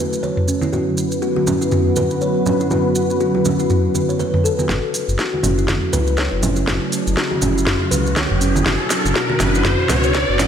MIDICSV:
0, 0, Header, 1, 6, 480
1, 0, Start_track
1, 0, Key_signature, 3, "minor"
1, 0, Tempo, 495868
1, 705, Time_signature, 4, 2, 24, 8
1, 10139, End_track
2, 0, Start_track
2, 0, Title_t, "Kalimba"
2, 0, Program_c, 0, 108
2, 0, Note_on_c, 0, 71, 94
2, 107, Note_off_c, 0, 71, 0
2, 221, Note_on_c, 0, 73, 75
2, 297, Note_off_c, 0, 73, 0
2, 462, Note_on_c, 0, 61, 71
2, 587, Note_off_c, 0, 61, 0
2, 600, Note_on_c, 0, 64, 73
2, 698, Note_off_c, 0, 64, 0
2, 703, Note_on_c, 0, 66, 76
2, 778, Note_off_c, 0, 66, 0
2, 1182, Note_on_c, 0, 66, 98
2, 1307, Note_off_c, 0, 66, 0
2, 1320, Note_on_c, 0, 66, 100
2, 1377, Note_off_c, 0, 66, 0
2, 1423, Note_on_c, 0, 61, 74
2, 1548, Note_off_c, 0, 61, 0
2, 1562, Note_on_c, 0, 64, 74
2, 1660, Note_off_c, 0, 64, 0
2, 1664, Note_on_c, 0, 66, 79
2, 1739, Note_off_c, 0, 66, 0
2, 1904, Note_on_c, 0, 71, 95
2, 2028, Note_off_c, 0, 71, 0
2, 2145, Note_on_c, 0, 73, 80
2, 2219, Note_off_c, 0, 73, 0
2, 2382, Note_on_c, 0, 61, 73
2, 2507, Note_off_c, 0, 61, 0
2, 2522, Note_on_c, 0, 64, 74
2, 2619, Note_off_c, 0, 64, 0
2, 2621, Note_on_c, 0, 66, 76
2, 2697, Note_off_c, 0, 66, 0
2, 3103, Note_on_c, 0, 66, 98
2, 3228, Note_off_c, 0, 66, 0
2, 3239, Note_on_c, 0, 66, 97
2, 3296, Note_off_c, 0, 66, 0
2, 3344, Note_on_c, 0, 61, 74
2, 3468, Note_off_c, 0, 61, 0
2, 3481, Note_on_c, 0, 64, 74
2, 3579, Note_off_c, 0, 64, 0
2, 3582, Note_on_c, 0, 66, 79
2, 3658, Note_off_c, 0, 66, 0
2, 3821, Note_on_c, 0, 66, 72
2, 3947, Note_off_c, 0, 66, 0
2, 3959, Note_on_c, 0, 73, 72
2, 4058, Note_off_c, 0, 73, 0
2, 4060, Note_on_c, 0, 71, 94
2, 4186, Note_off_c, 0, 71, 0
2, 4299, Note_on_c, 0, 69, 72
2, 4426, Note_off_c, 0, 69, 0
2, 4437, Note_on_c, 0, 71, 74
2, 4537, Note_off_c, 0, 71, 0
2, 4540, Note_on_c, 0, 66, 78
2, 4617, Note_off_c, 0, 66, 0
2, 5021, Note_on_c, 0, 66, 98
2, 5147, Note_off_c, 0, 66, 0
2, 5158, Note_on_c, 0, 66, 101
2, 5216, Note_off_c, 0, 66, 0
2, 5257, Note_on_c, 0, 61, 75
2, 5385, Note_off_c, 0, 61, 0
2, 5399, Note_on_c, 0, 64, 73
2, 5498, Note_off_c, 0, 64, 0
2, 5499, Note_on_c, 0, 66, 79
2, 5576, Note_off_c, 0, 66, 0
2, 5740, Note_on_c, 0, 71, 99
2, 5866, Note_off_c, 0, 71, 0
2, 5981, Note_on_c, 0, 73, 78
2, 6057, Note_off_c, 0, 73, 0
2, 6219, Note_on_c, 0, 61, 72
2, 6346, Note_off_c, 0, 61, 0
2, 6356, Note_on_c, 0, 64, 73
2, 6457, Note_off_c, 0, 64, 0
2, 6459, Note_on_c, 0, 66, 80
2, 6536, Note_off_c, 0, 66, 0
2, 6938, Note_on_c, 0, 66, 99
2, 7063, Note_off_c, 0, 66, 0
2, 7075, Note_on_c, 0, 66, 100
2, 7134, Note_off_c, 0, 66, 0
2, 7180, Note_on_c, 0, 61, 77
2, 7306, Note_off_c, 0, 61, 0
2, 7316, Note_on_c, 0, 64, 74
2, 7417, Note_off_c, 0, 64, 0
2, 7419, Note_on_c, 0, 66, 84
2, 7496, Note_off_c, 0, 66, 0
2, 7657, Note_on_c, 0, 71, 101
2, 7785, Note_off_c, 0, 71, 0
2, 7899, Note_on_c, 0, 73, 79
2, 7976, Note_off_c, 0, 73, 0
2, 8142, Note_on_c, 0, 61, 76
2, 8267, Note_off_c, 0, 61, 0
2, 8278, Note_on_c, 0, 64, 74
2, 8377, Note_off_c, 0, 64, 0
2, 8383, Note_on_c, 0, 66, 80
2, 8458, Note_off_c, 0, 66, 0
2, 8862, Note_on_c, 0, 66, 101
2, 8988, Note_off_c, 0, 66, 0
2, 8998, Note_on_c, 0, 66, 102
2, 9056, Note_off_c, 0, 66, 0
2, 9105, Note_on_c, 0, 61, 78
2, 9229, Note_off_c, 0, 61, 0
2, 9243, Note_on_c, 0, 64, 78
2, 9340, Note_off_c, 0, 64, 0
2, 9342, Note_on_c, 0, 66, 82
2, 9418, Note_off_c, 0, 66, 0
2, 9583, Note_on_c, 0, 71, 101
2, 9708, Note_off_c, 0, 71, 0
2, 9825, Note_on_c, 0, 73, 83
2, 9899, Note_off_c, 0, 73, 0
2, 10064, Note_on_c, 0, 61, 77
2, 10139, Note_off_c, 0, 61, 0
2, 10139, End_track
3, 0, Start_track
3, 0, Title_t, "Analog synth pad"
3, 0, Program_c, 1, 89
3, 0, Note_on_c, 1, 49, 83
3, 0, Note_on_c, 1, 54, 77
3, 0, Note_on_c, 1, 57, 76
3, 0, Note_on_c, 1, 64, 75
3, 0, Note_on_c, 1, 69, 92
3, 664, Note_off_c, 1, 54, 0
3, 666, Note_off_c, 1, 49, 0
3, 666, Note_off_c, 1, 57, 0
3, 667, Note_off_c, 1, 64, 0
3, 667, Note_off_c, 1, 69, 0
3, 705, Note_on_c, 1, 50, 76
3, 706, Note_on_c, 1, 42, 83
3, 706, Note_on_c, 1, 59, 74
3, 706, Note_on_c, 1, 66, 75
3, 707, Note_on_c, 1, 54, 76
3, 707, Note_on_c, 1, 71, 93
3, 4506, Note_off_c, 1, 50, 0
3, 4507, Note_off_c, 1, 42, 0
3, 4507, Note_off_c, 1, 54, 0
3, 4507, Note_off_c, 1, 59, 0
3, 4507, Note_off_c, 1, 66, 0
3, 4507, Note_off_c, 1, 71, 0
3, 4547, Note_on_c, 1, 49, 81
3, 4547, Note_on_c, 1, 57, 78
3, 4547, Note_on_c, 1, 66, 91
3, 4548, Note_on_c, 1, 54, 78
3, 4549, Note_on_c, 1, 64, 77
3, 6447, Note_off_c, 1, 66, 0
3, 6462, Note_on_c, 1, 68, 91
3, 8347, Note_off_c, 1, 57, 0
3, 8348, Note_off_c, 1, 49, 0
3, 8349, Note_off_c, 1, 64, 0
3, 8364, Note_off_c, 1, 68, 0
3, 8386, Note_on_c, 1, 62, 79
3, 8386, Note_on_c, 1, 66, 97
3, 8387, Note_on_c, 1, 47, 87
3, 10139, Note_off_c, 1, 47, 0
3, 10139, Note_off_c, 1, 54, 0
3, 10139, Note_off_c, 1, 62, 0
3, 10139, Note_off_c, 1, 66, 0
3, 10139, End_track
4, 0, Start_track
4, 0, Title_t, "Detuned saw bass"
4, 0, Program_c, 2, 39
4, 4542, Note_on_c, 2, 30, 94
4, 4656, Note_off_c, 2, 30, 0
4, 4921, Note_on_c, 2, 30, 101
4, 5005, Note_off_c, 2, 30, 0
4, 5265, Note_on_c, 2, 30, 89
4, 5602, Note_off_c, 2, 30, 0
4, 5747, Note_on_c, 2, 37, 89
4, 6083, Note_off_c, 2, 37, 0
4, 6122, Note_on_c, 2, 30, 100
4, 6435, Note_off_c, 2, 30, 0
4, 6464, Note_on_c, 2, 30, 96
4, 6577, Note_off_c, 2, 30, 0
4, 6844, Note_on_c, 2, 30, 99
4, 6927, Note_off_c, 2, 30, 0
4, 7182, Note_on_c, 2, 30, 89
4, 7521, Note_off_c, 2, 30, 0
4, 7663, Note_on_c, 2, 37, 90
4, 8002, Note_off_c, 2, 37, 0
4, 8042, Note_on_c, 2, 30, 100
4, 8355, Note_off_c, 2, 30, 0
4, 8382, Note_on_c, 2, 30, 99
4, 8496, Note_off_c, 2, 30, 0
4, 8762, Note_on_c, 2, 30, 103
4, 8846, Note_off_c, 2, 30, 0
4, 9101, Note_on_c, 2, 30, 91
4, 9441, Note_off_c, 2, 30, 0
4, 9582, Note_on_c, 2, 37, 93
4, 9921, Note_off_c, 2, 37, 0
4, 9958, Note_on_c, 2, 30, 104
4, 10139, Note_off_c, 2, 30, 0
4, 10139, End_track
5, 0, Start_track
5, 0, Title_t, "Riser"
5, 0, Program_c, 3, 103
5, 4543, Note_on_c, 3, 60, 76
5, 10139, Note_off_c, 3, 60, 0
5, 10139, End_track
6, 0, Start_track
6, 0, Title_t, "Drums"
6, 125, Note_on_c, 9, 70, 47
6, 222, Note_off_c, 9, 70, 0
6, 225, Note_on_c, 9, 63, 59
6, 226, Note_on_c, 9, 70, 34
6, 322, Note_off_c, 9, 63, 0
6, 322, Note_off_c, 9, 70, 0
6, 361, Note_on_c, 9, 45, 79
6, 458, Note_off_c, 9, 45, 0
6, 466, Note_on_c, 9, 70, 85
6, 562, Note_off_c, 9, 70, 0
6, 594, Note_on_c, 9, 63, 87
6, 601, Note_on_c, 9, 70, 45
6, 691, Note_off_c, 9, 63, 0
6, 698, Note_off_c, 9, 70, 0
6, 705, Note_on_c, 9, 70, 33
6, 709, Note_on_c, 9, 64, 68
6, 802, Note_off_c, 9, 70, 0
6, 806, Note_off_c, 9, 64, 0
6, 943, Note_on_c, 9, 70, 79
6, 1039, Note_off_c, 9, 70, 0
6, 1079, Note_on_c, 9, 70, 50
6, 1176, Note_off_c, 9, 70, 0
6, 1182, Note_on_c, 9, 70, 31
6, 1279, Note_off_c, 9, 70, 0
6, 1325, Note_on_c, 9, 63, 53
6, 1421, Note_off_c, 9, 63, 0
6, 1421, Note_on_c, 9, 63, 56
6, 1422, Note_on_c, 9, 70, 77
6, 1425, Note_on_c, 9, 64, 80
6, 1518, Note_off_c, 9, 63, 0
6, 1519, Note_off_c, 9, 70, 0
6, 1521, Note_off_c, 9, 64, 0
6, 1563, Note_on_c, 9, 70, 48
6, 1658, Note_off_c, 9, 70, 0
6, 1658, Note_on_c, 9, 70, 34
6, 1661, Note_on_c, 9, 63, 59
6, 1666, Note_on_c, 9, 45, 93
6, 1755, Note_off_c, 9, 70, 0
6, 1758, Note_off_c, 9, 63, 0
6, 1762, Note_off_c, 9, 45, 0
6, 1898, Note_on_c, 9, 70, 83
6, 1908, Note_on_c, 9, 64, 84
6, 1912, Note_on_c, 9, 63, 53
6, 1995, Note_off_c, 9, 70, 0
6, 2004, Note_off_c, 9, 64, 0
6, 2009, Note_off_c, 9, 63, 0
6, 2038, Note_on_c, 9, 70, 48
6, 2134, Note_off_c, 9, 70, 0
6, 2141, Note_on_c, 9, 70, 34
6, 2238, Note_off_c, 9, 70, 0
6, 2382, Note_on_c, 9, 70, 81
6, 2384, Note_on_c, 9, 64, 89
6, 2479, Note_off_c, 9, 70, 0
6, 2481, Note_off_c, 9, 64, 0
6, 2521, Note_on_c, 9, 70, 45
6, 2617, Note_off_c, 9, 70, 0
6, 2619, Note_on_c, 9, 70, 35
6, 2623, Note_on_c, 9, 64, 83
6, 2716, Note_off_c, 9, 70, 0
6, 2719, Note_off_c, 9, 64, 0
6, 2858, Note_on_c, 9, 70, 83
6, 2955, Note_off_c, 9, 70, 0
6, 3001, Note_on_c, 9, 70, 46
6, 3098, Note_off_c, 9, 70, 0
6, 3100, Note_on_c, 9, 70, 36
6, 3197, Note_off_c, 9, 70, 0
6, 3241, Note_on_c, 9, 63, 61
6, 3338, Note_off_c, 9, 63, 0
6, 3340, Note_on_c, 9, 70, 82
6, 3345, Note_on_c, 9, 63, 57
6, 3346, Note_on_c, 9, 64, 85
6, 3436, Note_off_c, 9, 70, 0
6, 3442, Note_off_c, 9, 63, 0
6, 3443, Note_off_c, 9, 64, 0
6, 3479, Note_on_c, 9, 70, 45
6, 3576, Note_off_c, 9, 70, 0
6, 3578, Note_on_c, 9, 70, 34
6, 3583, Note_on_c, 9, 45, 93
6, 3675, Note_off_c, 9, 70, 0
6, 3680, Note_off_c, 9, 45, 0
6, 3823, Note_on_c, 9, 70, 79
6, 3824, Note_on_c, 9, 63, 59
6, 3919, Note_off_c, 9, 70, 0
6, 3921, Note_off_c, 9, 63, 0
6, 3964, Note_on_c, 9, 70, 50
6, 4061, Note_off_c, 9, 70, 0
6, 4061, Note_on_c, 9, 70, 35
6, 4066, Note_on_c, 9, 63, 64
6, 4158, Note_off_c, 9, 70, 0
6, 4162, Note_off_c, 9, 63, 0
6, 4200, Note_on_c, 9, 45, 78
6, 4200, Note_on_c, 9, 63, 57
6, 4296, Note_off_c, 9, 63, 0
6, 4297, Note_off_c, 9, 45, 0
6, 4311, Note_on_c, 9, 70, 86
6, 4407, Note_off_c, 9, 70, 0
6, 4443, Note_on_c, 9, 63, 78
6, 4443, Note_on_c, 9, 70, 45
6, 4540, Note_off_c, 9, 63, 0
6, 4540, Note_off_c, 9, 70, 0
6, 4542, Note_on_c, 9, 36, 116
6, 4542, Note_on_c, 9, 38, 47
6, 4545, Note_on_c, 9, 64, 84
6, 4547, Note_on_c, 9, 70, 34
6, 4639, Note_off_c, 9, 36, 0
6, 4639, Note_off_c, 9, 38, 0
6, 4641, Note_off_c, 9, 64, 0
6, 4644, Note_off_c, 9, 70, 0
6, 4782, Note_on_c, 9, 46, 89
6, 4788, Note_on_c, 9, 70, 92
6, 4879, Note_off_c, 9, 46, 0
6, 4885, Note_off_c, 9, 70, 0
6, 4926, Note_on_c, 9, 70, 46
6, 5022, Note_off_c, 9, 70, 0
6, 5022, Note_on_c, 9, 36, 110
6, 5024, Note_on_c, 9, 38, 49
6, 5024, Note_on_c, 9, 70, 38
6, 5119, Note_off_c, 9, 36, 0
6, 5121, Note_off_c, 9, 38, 0
6, 5121, Note_off_c, 9, 70, 0
6, 5169, Note_on_c, 9, 63, 60
6, 5258, Note_on_c, 9, 64, 94
6, 5259, Note_off_c, 9, 63, 0
6, 5259, Note_on_c, 9, 63, 63
6, 5263, Note_on_c, 9, 70, 90
6, 5264, Note_on_c, 9, 46, 79
6, 5355, Note_off_c, 9, 64, 0
6, 5356, Note_off_c, 9, 63, 0
6, 5360, Note_off_c, 9, 46, 0
6, 5360, Note_off_c, 9, 70, 0
6, 5403, Note_on_c, 9, 70, 47
6, 5499, Note_off_c, 9, 70, 0
6, 5499, Note_on_c, 9, 70, 41
6, 5500, Note_on_c, 9, 63, 62
6, 5501, Note_on_c, 9, 38, 51
6, 5501, Note_on_c, 9, 45, 89
6, 5503, Note_on_c, 9, 36, 113
6, 5596, Note_off_c, 9, 63, 0
6, 5596, Note_off_c, 9, 70, 0
6, 5597, Note_off_c, 9, 38, 0
6, 5597, Note_off_c, 9, 45, 0
6, 5600, Note_off_c, 9, 36, 0
6, 5741, Note_on_c, 9, 70, 84
6, 5742, Note_on_c, 9, 46, 93
6, 5742, Note_on_c, 9, 63, 57
6, 5742, Note_on_c, 9, 64, 79
6, 5838, Note_off_c, 9, 63, 0
6, 5838, Note_off_c, 9, 70, 0
6, 5839, Note_off_c, 9, 46, 0
6, 5839, Note_off_c, 9, 64, 0
6, 5876, Note_on_c, 9, 70, 48
6, 5973, Note_off_c, 9, 70, 0
6, 5973, Note_on_c, 9, 70, 34
6, 5983, Note_on_c, 9, 36, 117
6, 5984, Note_on_c, 9, 38, 54
6, 6070, Note_off_c, 9, 70, 0
6, 6079, Note_off_c, 9, 36, 0
6, 6081, Note_off_c, 9, 38, 0
6, 6223, Note_on_c, 9, 46, 79
6, 6223, Note_on_c, 9, 70, 88
6, 6224, Note_on_c, 9, 64, 110
6, 6319, Note_off_c, 9, 46, 0
6, 6320, Note_off_c, 9, 70, 0
6, 6321, Note_off_c, 9, 64, 0
6, 6350, Note_on_c, 9, 70, 52
6, 6447, Note_off_c, 9, 70, 0
6, 6461, Note_on_c, 9, 38, 59
6, 6462, Note_on_c, 9, 36, 123
6, 6467, Note_on_c, 9, 64, 78
6, 6470, Note_on_c, 9, 70, 37
6, 6558, Note_off_c, 9, 38, 0
6, 6559, Note_off_c, 9, 36, 0
6, 6564, Note_off_c, 9, 64, 0
6, 6566, Note_off_c, 9, 70, 0
6, 6701, Note_on_c, 9, 46, 91
6, 6706, Note_on_c, 9, 70, 94
6, 6798, Note_off_c, 9, 46, 0
6, 6803, Note_off_c, 9, 70, 0
6, 6846, Note_on_c, 9, 70, 59
6, 6941, Note_on_c, 9, 38, 62
6, 6943, Note_off_c, 9, 70, 0
6, 6943, Note_on_c, 9, 36, 123
6, 6948, Note_on_c, 9, 70, 39
6, 7038, Note_off_c, 9, 38, 0
6, 7040, Note_off_c, 9, 36, 0
6, 7045, Note_off_c, 9, 70, 0
6, 7080, Note_on_c, 9, 63, 58
6, 7177, Note_off_c, 9, 63, 0
6, 7180, Note_on_c, 9, 70, 93
6, 7182, Note_on_c, 9, 46, 79
6, 7184, Note_on_c, 9, 64, 84
6, 7192, Note_on_c, 9, 63, 65
6, 7277, Note_off_c, 9, 70, 0
6, 7279, Note_off_c, 9, 46, 0
6, 7281, Note_off_c, 9, 64, 0
6, 7289, Note_off_c, 9, 63, 0
6, 7336, Note_on_c, 9, 70, 58
6, 7421, Note_on_c, 9, 38, 66
6, 7421, Note_on_c, 9, 45, 87
6, 7423, Note_on_c, 9, 36, 121
6, 7428, Note_off_c, 9, 70, 0
6, 7428, Note_on_c, 9, 70, 38
6, 7518, Note_off_c, 9, 38, 0
6, 7518, Note_off_c, 9, 45, 0
6, 7519, Note_off_c, 9, 36, 0
6, 7525, Note_off_c, 9, 70, 0
6, 7661, Note_on_c, 9, 46, 95
6, 7661, Note_on_c, 9, 63, 63
6, 7668, Note_on_c, 9, 70, 89
6, 7757, Note_off_c, 9, 63, 0
6, 7758, Note_off_c, 9, 46, 0
6, 7765, Note_off_c, 9, 70, 0
6, 7805, Note_on_c, 9, 70, 53
6, 7901, Note_off_c, 9, 70, 0
6, 7901, Note_on_c, 9, 63, 72
6, 7902, Note_on_c, 9, 36, 123
6, 7902, Note_on_c, 9, 38, 68
6, 7903, Note_on_c, 9, 70, 43
6, 7998, Note_off_c, 9, 38, 0
6, 7998, Note_off_c, 9, 63, 0
6, 7999, Note_off_c, 9, 36, 0
6, 7999, Note_off_c, 9, 70, 0
6, 8039, Note_on_c, 9, 45, 76
6, 8136, Note_off_c, 9, 45, 0
6, 8142, Note_on_c, 9, 46, 78
6, 8144, Note_on_c, 9, 70, 93
6, 8238, Note_off_c, 9, 46, 0
6, 8241, Note_off_c, 9, 70, 0
6, 8283, Note_on_c, 9, 63, 87
6, 8288, Note_on_c, 9, 70, 55
6, 8377, Note_on_c, 9, 64, 82
6, 8380, Note_off_c, 9, 63, 0
6, 8381, Note_on_c, 9, 38, 73
6, 8382, Note_off_c, 9, 70, 0
6, 8382, Note_on_c, 9, 36, 127
6, 8382, Note_on_c, 9, 70, 38
6, 8474, Note_off_c, 9, 64, 0
6, 8478, Note_off_c, 9, 36, 0
6, 8478, Note_off_c, 9, 38, 0
6, 8479, Note_off_c, 9, 70, 0
6, 8618, Note_on_c, 9, 70, 95
6, 8620, Note_on_c, 9, 38, 77
6, 8620, Note_on_c, 9, 46, 93
6, 8715, Note_off_c, 9, 70, 0
6, 8717, Note_off_c, 9, 38, 0
6, 8717, Note_off_c, 9, 46, 0
6, 8766, Note_on_c, 9, 70, 56
6, 8861, Note_on_c, 9, 36, 123
6, 8862, Note_on_c, 9, 38, 78
6, 8863, Note_off_c, 9, 70, 0
6, 8866, Note_on_c, 9, 70, 39
6, 8958, Note_off_c, 9, 36, 0
6, 8959, Note_off_c, 9, 38, 0
6, 8963, Note_off_c, 9, 70, 0
6, 8999, Note_on_c, 9, 63, 60
6, 9096, Note_off_c, 9, 63, 0
6, 9096, Note_on_c, 9, 64, 94
6, 9100, Note_on_c, 9, 38, 80
6, 9100, Note_on_c, 9, 46, 80
6, 9100, Note_on_c, 9, 70, 91
6, 9102, Note_on_c, 9, 63, 66
6, 9193, Note_off_c, 9, 64, 0
6, 9197, Note_off_c, 9, 38, 0
6, 9197, Note_off_c, 9, 46, 0
6, 9197, Note_off_c, 9, 70, 0
6, 9199, Note_off_c, 9, 63, 0
6, 9241, Note_on_c, 9, 70, 50
6, 9338, Note_off_c, 9, 70, 0
6, 9338, Note_on_c, 9, 38, 84
6, 9338, Note_on_c, 9, 45, 91
6, 9340, Note_on_c, 9, 70, 40
6, 9341, Note_on_c, 9, 36, 125
6, 9350, Note_on_c, 9, 63, 66
6, 9435, Note_off_c, 9, 38, 0
6, 9435, Note_off_c, 9, 45, 0
6, 9437, Note_off_c, 9, 70, 0
6, 9438, Note_off_c, 9, 36, 0
6, 9447, Note_off_c, 9, 63, 0
6, 9574, Note_on_c, 9, 64, 89
6, 9577, Note_on_c, 9, 70, 86
6, 9580, Note_on_c, 9, 38, 84
6, 9580, Note_on_c, 9, 46, 93
6, 9584, Note_on_c, 9, 63, 68
6, 9671, Note_off_c, 9, 64, 0
6, 9674, Note_off_c, 9, 70, 0
6, 9676, Note_off_c, 9, 38, 0
6, 9676, Note_off_c, 9, 46, 0
6, 9681, Note_off_c, 9, 63, 0
6, 9713, Note_on_c, 9, 70, 56
6, 9810, Note_off_c, 9, 70, 0
6, 9814, Note_on_c, 9, 70, 38
6, 9821, Note_on_c, 9, 36, 125
6, 9822, Note_on_c, 9, 38, 85
6, 9911, Note_off_c, 9, 70, 0
6, 9918, Note_off_c, 9, 36, 0
6, 9919, Note_off_c, 9, 38, 0
6, 10060, Note_on_c, 9, 70, 90
6, 10061, Note_on_c, 9, 38, 89
6, 10061, Note_on_c, 9, 46, 79
6, 10069, Note_on_c, 9, 64, 101
6, 10139, Note_off_c, 9, 38, 0
6, 10139, Note_off_c, 9, 46, 0
6, 10139, Note_off_c, 9, 64, 0
6, 10139, Note_off_c, 9, 70, 0
6, 10139, End_track
0, 0, End_of_file